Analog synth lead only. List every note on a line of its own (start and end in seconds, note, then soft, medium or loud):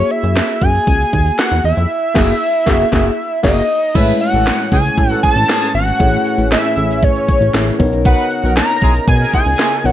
0.00 0.12 C#5 loud
0.11 0.64 E5 loud
0.62 1.39 G#5 loud
1.39 1.63 F#5 loud
1.65 3.40 E5 loud
3.44 3.97 D#5 loud
3.95 4.20 E5 loud
4.21 4.69 F#5 loud
4.72 5.20 G#5 loud
5.23 5.71 A5 loud
5.75 6.48 F#5 loud
6.52 7.05 E5 loud
7.04 7.80 C#5 medium
8.06 8.53 F#5 loud
8.57 9.04 A#5 loud
9.08 9.32 G#5 loud
9.34 9.87 G#5 loud
9.85 9.92 F#5 loud